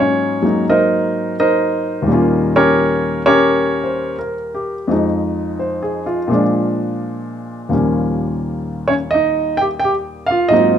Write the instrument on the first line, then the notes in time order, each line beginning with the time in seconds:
grand piano
Already playing: G#2 F#3 A#3 F4
0.00 C#4 C#5
0.42 F#3 G#3 A#3 D#4
0.69 D#4 A#4 C5 D#5
1.40 D#4 A#4 C5 D#5
2.02 D#2 A#2
2.06 G3 A#3
2.11 C#4 F4
2.56 C#4 G4 A#4 C#5
3.26 C#4 G4 A#4 C#5
3.84 C5
4.19 A#4
4.54 G4
4.88 F2 F3 G#3
4.92 D#4
5.59 C5
5.82 G#4
6.06 F4
6.28 A#2 F3 G#3
6.33 D4
7.69 D#2 A#2 F3 G3 A#3
7.74 C#4
8.88 C#4 C#5
9.11 D#4 D#5
9.57 G4 G5
9.79 G5
9.84 G4
10.26 F5
10.31 F4
10.48 G#2 F#3 D#5
10.53 A#3 C4 D#4 F4